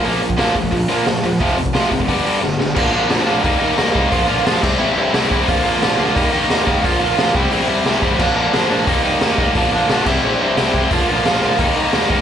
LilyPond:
<<
  \new Staff \with { instrumentName = "Distorted electric guitar" } { \clef bass \time 4/4 \key bes \lydian \tempo 4 = 177 <bes, f bes>8 <bes, f>8 <bes, f bes>8 <bes, f>8 <bes, f>8 <bes, f bes>8 <bes, f>8 <bes, f>8 | <f, c f>8 <f, c>8 <f, c f>8 <f, c>8 <g, d g>8 <g, d g>8 <g, d>8 <g, d>8 | <bes, d f bes d'>8 <bes, d f bes d'>8 <bes, d f bes d'>8 <bes, d f bes d'>8 <ees g bes ees'>8 <ees g bes ees'>8 <ees g bes ees'>8 <ees g bes ees'>8 | <bes, d f bes f'>8 <bes, d f bes f'>8 <bes, d f bes f'>8 <c g c' e'>8 <c g c' e'>8 <c g c' e'>8 <c g c' e'>8 <c g c' e'>8 |
<bes, d f bes f'>8 <bes, d f bes f'>8 <bes, d f bes f'>8 <bes, d f bes f'>8 <ees g bes ees'>8 <ees g bes ees'>8 <ees g bes ees'>8 <ees g bes ees'>8 | <bes, d f bes f'>8 <bes, d f bes f'>8 <bes, d f bes f'>8 <c g c' e'>8 <c g c' e'>8 <c g c' e'>8 <c g c' e'>8 <c g c' e'>8 | <bes, d f bes d'>8 <bes, d f bes d'>8 <bes, d f bes d'>8 <bes, d f bes d'>8 <ees g bes ees'>8 <ees g bes ees'>8 <ees g bes ees'>8 <ees g bes ees'>8 | <bes, d f bes d'>8 <bes, d f bes d'>8 <bes, d f bes d'>8 <c g c' e'>8 <c g c' e'>8 <c g c' e'>8 <c g c' e'>8 <c g c' e'>8 |
<bes, d f bes f'>8 <bes, d f bes f'>8 <bes, d f bes f'>8 <bes, d f bes f'>8 <ees g bes ees'>8 <ees g bes ees'>8 <ees g bes ees'>8 <ees g bes ees'>8 | }
  \new Staff \with { instrumentName = "Picked electric bass" } { \clef bass \time 4/4 \key bes \lydian bes,,4 bes,,8 bes,,8 bes,,8 bes,8 bes,,8 e,,8 | f,,4 f,,8 f,,8 g,,8 g,8 g,,8 g,,8 | bes,,8 bes,,8 bes,,8 bes,,8 ees,8 ees8 ees,8 c,8 | bes,,8 bes,,8 bes,,8 c,8 bes,,8 g,8 c,8 bes,,8 |
bes,,8 bes,,8 bes,,8 d,8 ees,8 ees8 ees,8 ees,8 | bes,,8 bes,,8 bes,,8 c,8 bes,,8 g,8 c,8 a,,8 | bes,,8 bes,,8 bes,,8 bes,,8 ees,8 ees8 ees,8 ees,8 | bes,,8 bes,,8 bes,,8 c,8 bes,,8 g,8 c,8 c,8 |
bes,,8 bes,,8 bes,,8 bes,,8 ees,8 ees8 ees,8 a,,8 | }
  \new DrumStaff \with { instrumentName = "Drums" } \drummode { \time 4/4 hho8 hho16 bd16 <hho sn>8 <hho bd>16 bd16 <hho bd>8 hho8 <hho sn>8 hho8 | <hho bd>8 hho16 bd16 <hho sn>8 <hho bd>16 bd16 <hho bd>8 hho8 sn8 sn8 | <cymc bd>4 <hho sn>4 <hho bd>4 <hho sn>8 bd8 | <hho bd>4 <hho sn>8 <cymc bd>8 r4 <hho sn>8 bd8 |
<hho bd>4 <hho sn>4 <hho bd>4 <hho sn>8 bd8 | <hho bd>4 <hho sn>8 bd8 hho4 <hho sn>8 bd8 | <cymc bd>4 <hho sn>4 <hho bd>4 <hho sn>8 bd8 | <hho bd>4 <hho sn>8 <cymc bd>8 r4 <hho sn>8 bd8 |
<hho bd>4 <hho sn>4 <hho bd>4 <hho sn>8 bd8 | }
>>